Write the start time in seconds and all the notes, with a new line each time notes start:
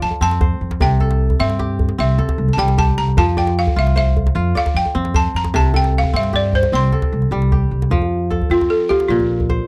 Already playing: F3 F4 C5 D5
0.02 F2 A5
0.11 djembe tone
0.21 F2 C4 A5
0.31 djembe slap
0.41 C5, djembe tone, djembe bass
0.61 F2
0.71 djembe slap, djembe tone
0.80 C2 C3 G5, djembe bass
1.00 A4, djembe tone
1.11 djembe slap
1.20 djembe slap
1.30 djembe tone, djembe bass
1.40 G2 C4 E5
1.49 djembe slap
1.59 G4, djembe slap, djembe tone
1.79 djembe bass
1.89 djembe slap, djembe tone
1.98 C2 C4 E5
2.18 A4, djembe tone
2.29 djembe slap, djembe bass
2.38 C2
2.48 djembe tone
2.53 A5
2.57 C2 G3 G5
2.68 djembe slap
2.78 G4 A5, djembe tone, djembe bass
2.97 C2 A#5
3.08 djembe tone
3.17 F2 F3 A5, djembe bass
3.37 D5 G5, djembe tone
3.47 djembe slap
3.57 F5, djembe slap
3.67 djembe tone, djembe bass
3.76 C2 F4 E5
3.87 djembe slap
3.96 C5 E5, djembe slap, djembe tone
4.17 djembe bass
4.27 djembe slap, djembe tone
4.35 F2 F4
4.55 D5 F5, djembe tone
4.66 djembe slap, djembe bass
4.74 F2 G5
4.86 djembe tone
4.95 F2 C4
5.05 djembe slap
5.14 C5 A5, djembe bass
5.34 F2 A#5
5.44 djembe slap, djembe tone
5.54 C2 C3 A5, djembe bass
5.74 A4 G5, djembe tone
5.84 djembe slap
5.94 djembe slap
5.98 F5
6.04 djembe slap, djembe tone, djembe bass
6.13 G2 C4 E5
6.23 djembe slap
6.33 G4 D5, djembe tone
6.53 C5, djembe slap, djembe bass
6.63 djembe slap, djembe tone
6.72 C2 C4 C6, djembe slap
6.82 djembe slap
6.92 A4, djembe tone
7.02 djembe slap, djembe bass
7.12 C2, djembe slap
7.22 djembe slap, djembe tone
7.31 C2 G3
7.42 djembe slap
7.52 G4, djembe tone, djembe bass
7.71 C2
7.82 djembe slap, djembe tone
7.91 F2 F3, djembe slap, djembe bass
8.02 djembe tone
8.30 A4, djembe tone
8.42 djembe slap, djembe bass
8.50 F2 C4 F4
8.61 djembe slap, djembe tone
8.70 A4
8.89 F4 G4, djembe tone
9.00 djembe slap
9.09 A#1 A#2 F4
9.20 djembe slap, djembe tone
9.40 djembe bass
9.49 C5, djembe slap, djembe tone